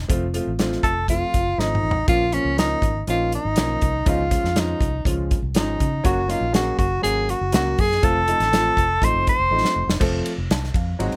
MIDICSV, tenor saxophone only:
0, 0, Header, 1, 2, 480
1, 0, Start_track
1, 0, Tempo, 495458
1, 91, Time_signature, 4, 2, 24, 8
1, 10813, End_track
2, 0, Start_track
2, 0, Title_t, "Tenor saxophone"
2, 0, Program_c, 0, 66
2, 812, Note_on_c, 0, 69, 98
2, 1036, Note_off_c, 0, 69, 0
2, 1062, Note_on_c, 0, 65, 93
2, 1546, Note_on_c, 0, 63, 92
2, 1561, Note_off_c, 0, 65, 0
2, 2018, Note_off_c, 0, 63, 0
2, 2024, Note_on_c, 0, 65, 101
2, 2261, Note_on_c, 0, 61, 90
2, 2275, Note_off_c, 0, 65, 0
2, 2500, Note_off_c, 0, 61, 0
2, 2511, Note_on_c, 0, 63, 93
2, 2952, Note_off_c, 0, 63, 0
2, 3003, Note_on_c, 0, 65, 93
2, 3215, Note_off_c, 0, 65, 0
2, 3246, Note_on_c, 0, 63, 95
2, 3965, Note_on_c, 0, 65, 92
2, 3980, Note_off_c, 0, 63, 0
2, 4454, Note_on_c, 0, 63, 78
2, 4468, Note_off_c, 0, 65, 0
2, 4918, Note_off_c, 0, 63, 0
2, 5398, Note_on_c, 0, 63, 79
2, 5837, Note_off_c, 0, 63, 0
2, 5871, Note_on_c, 0, 66, 88
2, 6108, Note_on_c, 0, 65, 91
2, 6122, Note_off_c, 0, 66, 0
2, 6343, Note_off_c, 0, 65, 0
2, 6348, Note_on_c, 0, 66, 88
2, 6569, Note_off_c, 0, 66, 0
2, 6580, Note_on_c, 0, 66, 90
2, 6804, Note_off_c, 0, 66, 0
2, 6815, Note_on_c, 0, 68, 92
2, 7075, Note_on_c, 0, 66, 87
2, 7089, Note_off_c, 0, 68, 0
2, 7308, Note_off_c, 0, 66, 0
2, 7318, Note_on_c, 0, 66, 92
2, 7561, Note_on_c, 0, 68, 99
2, 7575, Note_off_c, 0, 66, 0
2, 7792, Note_on_c, 0, 69, 108
2, 7806, Note_off_c, 0, 68, 0
2, 8762, Note_on_c, 0, 72, 112
2, 8777, Note_off_c, 0, 69, 0
2, 8990, Note_off_c, 0, 72, 0
2, 9002, Note_on_c, 0, 72, 108
2, 9670, Note_off_c, 0, 72, 0
2, 10813, End_track
0, 0, End_of_file